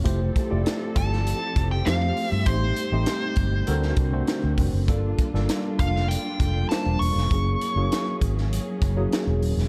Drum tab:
HH |x-x-x-x-x-x-x-o-|x-x-x-x-x-x-x-o-|x-x-x-x-x-x-x-o-|x-x-x-x-x-x-x-o-|
SD |----o--o----o---|----o----o--o---|---oo--o----o--o|----o--o----o--o|
BD |o-o---o---o-----|o-----o---o---o-|o-o---o---o-----|o-----o---o-----|